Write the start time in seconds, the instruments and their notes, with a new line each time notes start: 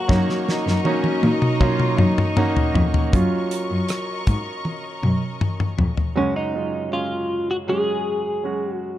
Already playing: grand piano F#3 A#3 C#4 F#4 F5, clean electric guitar F#4, string section A#4 A#5 C#6
0.08 cello F#2, grand piano F#3 A#3 C#4 D#4, string section D#5, kick, snare
0.30 snare
0.48 cello section D#4, snare
0.66 cello F#2, snare
0.84 grand piano F#3 A#3 C#4 D#4, cello section C#4, high tom
1.04 high tom
1.22 cello A#2, cello section D#4, high tom
1.42 mid tom
1.59 grand piano F#3 A#3 C#4 D#4, cello section F4, kick, mid tom
1.80 mid tom
1.98 cello F#2, cello section D#4, mid tom
2.18 mid tom
2.36 grand piano A#3 C#4 D#4 F#4, mid tom
2.57 floor tom
2.74 cello F2, floor tom
2.94 floor tom
3.13 cello F#2, grand piano F#3 C#4 F4, string section A#4 D#5 A#5 C#6, kick, closed hi-hat
3.51 closed hi-hat
3.71 cello F#2
3.89 cross-stick, closed hi-hat
4.27 cello G#2, kick, closed hi-hat
4.65 high tom
5.03 cello F#2, mid tom
5.41 mid tom
5.60 mid tom
5.78 cello F2, floor tom
5.97 floor tom
6.15 grand piano F#2 C#3 F#3 G#3 C#4 F#4, clean electric guitar C#4
6.36 clean electric guitar D#4
6.54 grand piano F#3 G#3 C#4 F4
6.91 grand piano F#3 G#3 C#4 G#4, clean electric guitar F4
7.51 clean electric guitar F#4
7.67 grand piano F#3 G#3 C#4 G#4, clean electric guitar G#4
8.43 grand piano F#3 G#3 C#4 F#4
8.74 clean electric guitar F#4